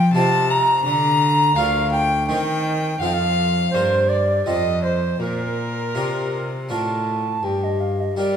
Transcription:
Already playing: F3 G5
0.13 C3 D#4 F4 C5 A5
0.50 A#5
0.85 D3 A#5
1.56 D2 D4 F4 A#4 F5
1.92 G5
2.27 D#3 C4 D#4 A#4 G5
3.00 F2 C4 D#4 A4 F5
3.06 G5
3.13 F5
3.71 G2 A#3 D4 C5
3.75 A#4
4.09 D5
4.46 F2 C4 F4 A4 D#5
4.83 C5
5.20 A#2 A#4
5.95 C3 D4 F4 A#4
6.69 A2 D4 F4 A#4 A5
7.43 G2 G5
7.64 D#5
7.80 F5
8.00 D#5
8.17 G3 D4 G4 A#4 D5

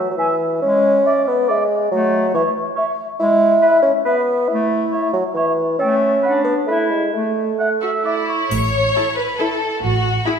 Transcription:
Already playing: F#3
0.11 F#3
0.17 E3 E5 G#5
0.62 G#3 C#4
1.06 D5 E5
1.27 B3
1.48 G#3 D5 E5
1.92 F#3 A3
2.34 E3 C#5 E5
2.76 C#5 E5
3.19 G#3 E4
3.62 B4 E5
3.83 C#4
4.05 B3 B4 E5
4.48 A3 E4
4.92 C#5 E5
5.13 F#3
5.34 E3 C#5 E5
5.79 A3 C#4 A4 G5
6.23 D4 B4 F#5
6.44 B3
6.67 A3 E4 B4 E5
6.90 G#3
7.13 A3
7.60 E5 F#5
7.81 F#4 E5
8.05 E4 D5 E5
8.28 C#5
8.51 A1 A2 C#5, triangle
8.95 E4 A4 A5
9.17 B4
9.38 E4 A4 A5
9.82 A1 A2 F#4
10.25 E4 G#4 B5

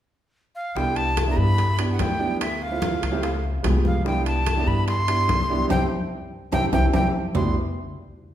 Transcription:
0.55 F5
0.75 C2 B3 D4 E4 G4 G5, high bongo, high conga
0.96 A5, high conga, high timbale
1.17 high bongo, high conga, high timbale
1.27 B3 D4 E4 G4 A#5
1.37 G2 B5, high conga
1.58 high bongo, high conga, high timbale
1.78 B3 D4 E4 G4, high conga, high timbale
1.93 F#5
1.99 D2 G5, high bongo, low bongo, high conga, high timbale, low timbale
2.19 B3 D4 E4 G4
2.41 E5, high bongo, high conga, high timbale
2.61 F5, high bongo, high conga
2.71 A3 C4 E4 F4
2.82 high bongo, high conga, high timbale
3.02 C#2, high bongo, high conga, high timbale
3.11 A3 C4 E4 G4
3.23 high bongo, high conga, high timbale
3.44 high conga
3.63 C2 G#3 B3 F4 G4, high bongo, low bongo, high conga, high timbale, low timbale
3.85 F5, high bongo, high conga
4.04 B3 D4 E4 G4 G5, high bongo, high conga
4.26 A5, high conga, high timbale
4.46 high bongo, high conga, high timbale
4.57 B3 D4 E4 G4
4.67 G2 B5, high conga
4.88 C6, high bongo, high conga, high timbale
5.07 B3 D4 E4 G4, high conga, high timbale
5.28 C2, high bongo, low bongo, high conga, high timbale
5.49 B3 D4 E4 G4
5.69 C2 C4 E4 G4 G5, low bongo, high conga, high timbale
6.52 C2 C4 E4 G4 G5, low bongo, high conga, high timbale
6.72 C2 C4 E4 G4 G5, low bongo, high conga, high timbale
6.93 C2 C4 E4 G4 G5, low bongo, high conga, high timbale
7.34 C2 B3 D4 E4 G4 C6, low bongo, low conga, low timbale

